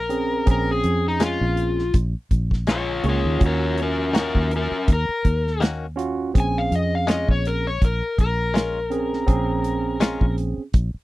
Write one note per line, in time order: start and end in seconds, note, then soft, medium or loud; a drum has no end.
0.00 0.44 A#1 medium
0.00 0.47 A#4 loud
0.09 0.44 C4 medium
0.09 0.44 C#4 medium
0.09 0.44 G#4 medium
0.09 closed hi-hat medium
0.46 0.82 A#1 medium
0.46 1.81 C4 medium
0.46 1.82 C#4 medium
0.46 1.82 G#4 medium
0.46 kick loud
0.46 closed hi-hat medium
0.51 0.69 A#4 medium
0.71 1.05 G#4 medium
0.84 1.38 F2 medium
0.84 closed hi-hat medium
1.08 1.23 D#4 medium
1.20 1.44 G#3 medium
1.20 1.45 C#4 medium
1.20 1.45 F4 medium
1.20 snare loud
1.20 closed hi-hat medium
1.25 1.95 F4 medium
1.41 1.91 A#1 medium
1.57 closed hi-hat medium
1.79 snare soft
1.94 2.13 A#1 medium
1.94 kick medium
1.94 closed hi-hat medium
2.31 3.01 A#1 medium
2.31 kick medium
2.31 closed hi-hat medium
2.51 kick medium
2.51 snare soft
2.67 2.91 G#3 medium
2.67 2.92 C#4 medium
2.67 2.92 F4 medium
2.67 3.06 F4 medium
2.67 snare loud
2.67 closed hi-hat medium
2.71 3.05 C#5 medium
3.03 3.23 C#2 medium
3.03 3.38 A#3 medium
3.03 3.38 C#4 medium
3.03 3.38 G#4 medium
3.03 closed hi-hat medium
3.09 3.41 F4 medium
3.09 3.43 C#5 medium
3.25 3.40 D#2 medium
3.39 4.31 D#2 loud
3.39 4.75 C#4 medium
3.39 4.75 F4 medium
3.39 4.75 F#4 medium
3.39 kick loud
3.39 closed hi-hat medium
3.46 3.78 A#4 medium
3.46 3.79 C#5 medium
3.78 closed hi-hat medium
3.82 4.14 C#4 medium
3.82 4.16 A#4 medium
4.14 4.38 D#3 medium
4.14 4.38 A#3 medium
4.14 4.39 C#4 medium
4.14 4.39 F#4 medium
4.14 snare loud
4.14 closed hi-hat medium
4.18 4.51 C#4 medium
4.18 4.53 A#4 medium
4.35 4.70 D#2 medium
4.35 kick medium
4.51 closed hi-hat medium
4.56 4.88 C#4 medium
4.56 4.90 A#4 medium
4.71 muted fingered electric bass stroke soft
4.88 5.07 D#2 medium
4.88 kick loud
4.88 closed hi-hat medium
4.93 5.62 A#4 medium
5.09 muted fingered electric bass stroke soft
5.25 6.31 D#2 medium
5.25 kick medium
5.25 closed hi-hat medium
5.47 snare soft
5.61 5.85 D#3 medium
5.61 5.85 A#3 medium
5.61 5.85 C#4 medium
5.61 5.86 F#4 medium
5.61 snare loud
5.61 closed hi-hat medium
5.96 6.31 C#4 medium
5.96 6.31 F4 medium
5.96 6.31 F#4 medium
5.96 closed hi-hat medium
6.34 6.69 A#1 medium
6.34 7.69 C4 medium
6.34 7.69 C#4 medium
6.34 7.69 G#4 medium
6.34 kick loud
6.34 closed hi-hat medium
6.40 6.57 G#5 loud
6.58 6.73 F5 medium
6.71 7.25 F2 medium
6.71 closed hi-hat medium
6.76 6.93 D#5 medium
6.95 7.10 F5 medium
7.07 7.31 G#3 medium
7.07 7.32 C#4 medium
7.07 7.32 F4 medium
7.07 7.29 D#5 medium
7.07 snare loud
7.07 closed hi-hat medium
7.28 7.78 A#1 medium
7.28 7.46 C#5 medium
7.28 kick medium
7.45 7.66 A#4 medium
7.45 closed hi-hat medium
7.67 7.82 C#5 medium
7.82 8.01 A#1 medium
7.82 8.19 A#4 medium
7.82 kick loud
7.82 closed hi-hat medium
8.18 9.24 A#1 medium
8.18 10.36 A#4 medium
8.18 kick medium
8.18 closed hi-hat medium
8.54 8.78 G#3 medium
8.54 8.78 C#4 medium
8.54 8.79 F4 medium
8.54 snare loud
8.54 closed hi-hat medium
8.90 9.24 C4 medium
8.90 9.25 C#4 medium
8.90 9.25 G#4 medium
8.90 closed hi-hat medium
9.13 snare soft
9.26 10.17 A#1 loud
9.26 10.62 C4 medium
9.26 10.62 C#4 medium
9.26 10.62 G#4 loud
9.26 kick loud
9.26 closed hi-hat medium
9.64 closed hi-hat medium
10.00 10.24 G#3 medium
10.00 10.25 C#4 medium
10.00 10.25 F4 medium
10.00 snare loud
10.00 closed hi-hat medium
10.21 10.56 A#1 loud
10.21 kick medium
10.38 closed hi-hat medium
10.58 muted fingered electric bass stroke soft
10.74 10.93 A#1 medium
10.74 kick loud
10.74 closed hi-hat medium
10.94 muted fingered electric bass stroke soft